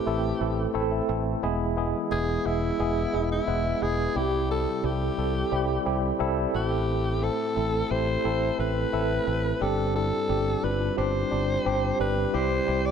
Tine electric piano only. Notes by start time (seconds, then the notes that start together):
Already playing: A2 A3 C4 E4 A4 B4
0.06 A3 C4 E4 A4
0.40 A3 C4 E4 A4
0.74 A3 C4 E4 A4 A5
0.92 E5
1.08 A3 C4 E4 A4
1.42 E3 G#3 B3 E4 G#4
1.77 G#3 B3 E4 G#4
2.11 G#3 B3 E4 G#4
2.45 G#3 B3 E4 G#4
2.79 G#3 B3 E4 G#4
3.13 G#3 B3 E4 G#4
3.47 G#3 B3 E4 B4
3.81 G#3 B3 E4 G#4
4.15 C3 G3 C4 E4 G4
4.49 G3 C4 E4 G4
4.83 G3 C4 E4 A4
5.17 G3 C4 E4 A4
5.52 G3 C4 E4 G4
5.85 G3 C4 E4 G4
6.19 G3 C4 E4 A4
6.54 A2 A3 C4 E4 A4
7.22 A3 C4 E4 C5
7.56 A3 C4 E4 A4
7.90 A3 C4 E4 G4
8.24 A3 C4 E4 A4
8.58 A3 C4 E4 B4
8.93 A3 C4 E4 A4
9.27 A3 C4 E4 A4
9.61 G2 G3 C4 D4 G4
9.95 G3 C4 D4 E4
10.29 G3 C4 D4 G4
10.63 G3 C4 D4 F4
10.97 G3 C4 D4 G4
11.31 G3 C4 D4 G4
11.65 G3 C4 D4 G4
11.99 G3 C4 D4 G4
12.33 C3 G3 C4 E4 G4
12.67 G3 C4 E4 G4